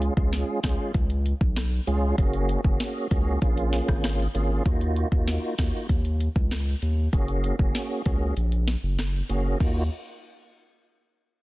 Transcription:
Already playing: G#3 C#4 F4 G#4
0.02 closed hi-hat
0.17 C#2 G#3 C#4 F4 G#4, kick
0.33 snare, closed hi-hat
0.63 C#2 G#3 C#4 F4 G#4, kick, cross-stick, snare, closed hi-hat
0.94 C#2, kick, closed hi-hat
1.10 closed hi-hat
1.26 closed hi-hat
1.41 B1, kick
1.56 cross-stick, snare, closed hi-hat
1.87 C#2 G#3 C#4 F4 G#4, closed hi-hat
2.18 F#1 A#3 C#4 F#4 G#4, kick, closed hi-hat
2.33 closed hi-hat
2.49 closed hi-hat
2.64 F#1 A#3 C#4 F#4 G#4, kick
2.80 snare, closed hi-hat
3.11 C#2 A#3 C#4 F#4 G#4, kick, closed hi-hat
3.42 A#1 A#3 C#4 F4 G#4, kick, closed hi-hat
3.57 closed hi-hat
3.73 snare, closed hi-hat
3.88 G#1, kick, cross-stick
4.04 cross-stick, snare, closed hi-hat
4.19 closed hi-hat
4.34 G#1 A#3 C#4 F4 G#4, closed hi-hat
4.65 D#2 A#3 D#4 F4 F#4, kick, closed hi-hat
4.81 closed hi-hat
4.96 closed hi-hat
5.12 D#2 A#3 D#4 F4 F#4, kick
5.28 snare, closed hi-hat
5.58 D#2 A#3 D#4 F4 F#4, kick, cross-stick, snare, closed hi-hat
5.89 D#2, kick, closed hi-hat
6.05 closed hi-hat
6.20 closed hi-hat
6.36 C#2, kick
6.51 cross-stick, snare, closed hi-hat
6.82 D#2, closed hi-hat
7.13 F#1 A#3 C#4 F#4 G#4, kick, closed hi-hat
7.28 closed hi-hat
7.44 closed hi-hat
7.59 F#1 A#3 C#4 F#4 G#4, kick
7.75 snare, closed hi-hat
8.05 C#2 A#3 C#4 F#4 G#4, kick, closed hi-hat
8.37 A#1, closed hi-hat
8.52 closed hi-hat
8.68 snare, closed hi-hat
8.83 F#1
8.99 cross-stick, snare, closed hi-hat
9.29 F#1 A#3 C#4 F#4 G#4, closed hi-hat
9.60 D#2 A#3 D#4 F4 F#4, kick, crash

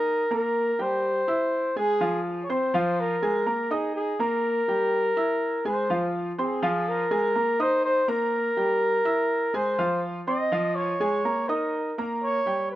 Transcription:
Already playing: D#4 A#4 D#5 D#6
0.31 A#3 A#4 A#5
0.79 G3 G4 C5 G5
1.28 E4 E5 E6
1.76 G#3 G#4 G#5
2.00 F3 F4 F5
2.44 C#5
2.49 C4 C5 C6
2.74 F3 F4 F5
3.00 A#4
3.22 G#3 G#4 G#5
3.46 A#3 A#4 A#5
3.71 D#4 G#4 D#5 D#6
3.96 G#4
4.19 A#3 A#4 A#5
4.68 G3 G4 G5
5.17 E4 E5 E6
5.65 G#3 G#4 C5 G#5
5.90 F3 F4 F5
6.38 C4 G#4 C5 C6
6.62 F3 F4 F5
6.88 A#4
7.11 G#3 G#4 G#5
7.35 A#3 A#4 A#5
7.59 D#4 C5 D#5 D#6
7.85 C5
8.08 A#3 A#4 A#5
8.57 G3 G4 G5
9.05 E4 E5 E6
9.54 G#3 G#4 C5 G#5
9.78 F3 F4 F5
10.27 C4 C5 D#5 C6
10.52 F3 F4 F5
10.75 C#5
11.00 G#3 G#4 G#5
11.25 A#3 A#4 A#5
11.49 D#4 A#4 D#5 D#6
11.98 A#3 A#4 A#5
12.23 C#5
12.46 G3 G4 G5
12.71 C5

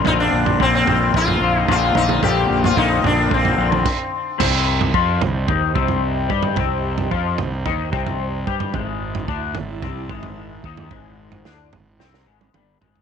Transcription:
Already playing: F5
0.04 A#1 A#2 D3 A#3 C4 D#4 F4 C5 D5 A#5, kick, floor tom
0.20 D4
0.32 A#1
0.45 A#3 C4 F4, floor tom
0.59 A#1 A#2 D3 A#3 C4 F4, kick
0.75 C4
0.87 A#1 D3 A#3 C4 F4, floor tom
1.00 A#3 C4 F4
1.14 A#1 D3 A#3 C4 F4, kick
1.27 A#3 C4 F4, floor tom
1.40 A#1 D3 A#3 C4 F4
1.54 A#3 C4 F4
1.60 D#4
1.67 A#1 A#2 D3 A#3 C4 F4, kick, floor tom
1.71 F4
1.94 A#1 D3 A#3 C4 D#4 F4, mid tom
2.07 A#3 C4 F4, mid tom
2.21 A#1 A#2 D3 A#3 C4 F4 G4 G5, kick, floor tom
2.49 A#1
2.63 A#3 C4 F4, floor tom
2.76 A#1 A#2 D3 A#3 C4 D#4 F4, kick
3.02 A#1 D3 A#3 C4 D4 F4, floor tom
3.15 A#3 C4 F4
3.28 A#1 D3 A#3 C4 F4, kick
3.34 C4
3.42 A#3 C4 F4, floor tom
3.56 A#1 D3 A#3 C4 F4
3.70 A#3 C4 F4, mid tom
3.86 kick, crash
4.38 C2 C3 C4 D#5, kick, floor tom, crash
4.42 G4 C5 G5
4.81 floor tom
4.94 F2 F3 F4, kick
5.21 C2 C3, floor tom, mid tom
5.48 D#2 D#3 D#4, kick, floor tom
5.74 C2 C3 C4, kick
5.88 floor tom
6.29 G2 G3 G4, kick
6.42 floor tom
6.56 C2 C3 C4, kick, floor tom
6.98 floor tom
7.11 F2 F3 F4, kick
7.38 C2 C3, floor tom, mid tom
7.66 D#2 D#3 D#4, kick, floor tom
7.92 C2 C3 C4, kick
8.07 floor tom
8.47 G2 G3 G4, kick
8.60 floor tom
8.74 G#1 G#2 G#3 E4 E5 A5, kick, floor tom
9.15 floor tom
9.28 D2 D3 D4, kick
9.55 G#1 A2, floor tom, mid tom
9.82 C2 C3 C4, kick, floor tom
10.09 G#1 G#2 G#3, kick
10.23 floor tom
10.64 D#2 D#3 D#4, kick
10.77 floor tom
10.89 G#1 G#2 G#3 F#5, kick, floor tom
11.32 floor tom
11.45 D2 D3 D4, snare
11.73 G#1 A2, floor tom, mid tom
11.99 C2 C3 C4, snare
12.14 snare
12.26 G#1 G#2 G#3
12.41 high tom
12.54 G1 G2 G3, mid tom
12.81 G#1 G#2 G#3, floor tom
12.95 floor tom

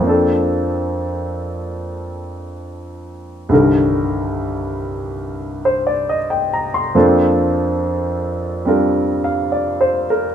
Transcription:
Already playing: F2
0.00 F3 A#3 C4
0.07 D4 A4
3.49 C2 G2 D3 D#3
3.54 A#4
5.65 C5
5.87 D5
6.09 D#5
6.30 G5
6.53 A#5
6.74 C6
6.95 F2 F3 A#3 C4 D4 A4
8.65 G3 C4 D4 F4 A#4
9.24 F5
9.52 D5
9.81 C5
10.10 A#4

